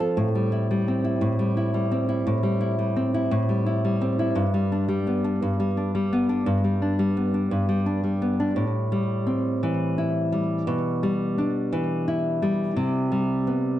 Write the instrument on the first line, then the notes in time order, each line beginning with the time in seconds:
nylon-string guitar
Already playing: F3 C4 F4
0.00 A4
0.17 A2
0.35 G3
0.52 E4
0.71 G3
0.88 C4
1.04 E4
1.21 A2
1.39 G3
1.57 E4
1.74 G3
1.91 C4
2.09 E4
2.27 A2
2.43 G3
2.61 E4
2.79 G3
2.96 C4
3.14 E4
3.31 A2
3.49 G3
3.66 E4
3.85 G3
4.01 C4
4.19 E4
4.35 G2
4.54 G3
4.72 D4
4.88 G3
5.07 B3
5.24 D4
5.42 G2
5.60 G3
5.77 D4
5.95 G3
6.13 B3
6.29 D4
6.46 G2
6.64 G3
6.82 D4
6.99 G3
7.17 B3
7.34 D4
7.51 G2
7.69 G3
7.86 D4
8.04 G3
8.22 B3
8.40 D4
8.56 A2
8.92 G3
9.27 C4
9.63 E3
9.98 E4
10.32 G3
10.67 B2
11.03 G3
11.38 D4
11.73 E3
12.08 E4
12.42 G3
12.76 C3
13.12 G3
13.47 B3